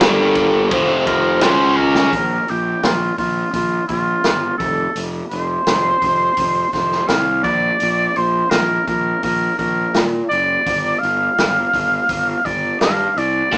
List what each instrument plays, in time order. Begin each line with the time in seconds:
0.01 fingered electric bass G1, overdriven electric guitar G2 D3 G3, tonewheel organ A#3 D4 G4 A#4, snare, ride
0.35 kick, ride
0.71 fingered electric bass F1, overdriven electric guitar F2 C3 F3, tonewheel organ F3 C4 F4 C5, kick, ride
1.07 oboe A#4, kick, ride
1.41 fingered electric bass C#2, overdriven electric guitar C#3 G#3 C#4, tonewheel organ G#3 C#4 G#4, oboe C5, snare, ride
1.77 oboe A#4, kick
1.95 snare
2.13 fingered electric bass A#1, kick, open hi-hat
2.48 fingered electric bass A#1, oboe G4, open hi-hat
2.83 fingered electric bass A#1, oboe F4, snare, open hi-hat
3.18 fingered electric bass A#1, oboe F4, kick, open hi-hat
3.53 fingered electric bass A#1, oboe F4, kick, open hi-hat
3.87 fingered electric bass A#1, oboe F4, kick, open hi-hat
4.24 fingered electric bass G1, snare, open hi-hat
4.58 fingered electric bass F1, oboe A4, kick, open hi-hat
4.95 fingered electric bass F1, open hi-hat
5.29 fingered electric bass F1, oboe C5, open hi-hat
5.67 fingered electric bass F1, snare, open hi-hat
6.02 fingered electric bass F1, kick, open hi-hat
6.37 fingered electric bass F1, kick, open hi-hat
6.73 fingered electric bass F1, oboe C5, kick, snare, open hi-hat
6.92 snare
7.08 fingered electric bass C2, oboe F5, snare, open hi-hat
7.44 fingered electric bass A#1, oboe D5, kick, open hi-hat
7.80 fingered electric bass A#1, open hi-hat
8.16 fingered electric bass A#1, oboe C5, open hi-hat
8.50 fingered electric bass A#1, oboe A#4, snare, open hi-hat
8.87 fingered electric bass A#1, oboe A#4, kick, open hi-hat
9.23 fingered electric bass A#1, oboe A#4, kick, open hi-hat
9.58 fingered electric bass A#1, oboe A#4, kick, open hi-hat
9.94 fingered electric bass A#2, snare, open hi-hat
10.29 fingered electric bass F#1, oboe D5, open hi-hat
10.66 fingered electric bass G1, kick, open hi-hat
10.99 oboe F5
11.03 fingered electric bass G1, open hi-hat
11.38 fingered electric bass G1, snare, open hi-hat
11.73 fingered electric bass G1, kick, open hi-hat
12.09 fingered electric bass G1, kick, open hi-hat
12.45 fingered electric bass G1, oboe D5, kick, open hi-hat
12.80 fingered electric bass G2, oboe F5, snare, open hi-hat
13.16 fingered electric bass C2, oboe D5, open hi-hat
13.52 fingered electric bass A#1, overdriven electric guitar A#2 D3 A#3 D4 F4, kick, open hi-hat